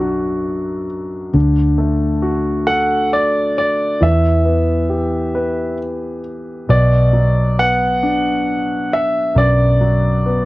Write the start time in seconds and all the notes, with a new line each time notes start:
Already playing: B1 F#2 F#3 D4
0.00 F#4
1.34 D2 D3
1.78 A3
2.23 F#4
2.67 A4 F#5
3.13 D5
3.58 D5
4.00 E2 E3 E5
4.45 B3
4.89 G4
5.35 B4
6.69 B1 B2 D5
7.13 F#3
7.59 B3 F#5
8.03 D4
8.93 E5
9.35 B1 F#2 D5
9.81 F#3
10.26 B3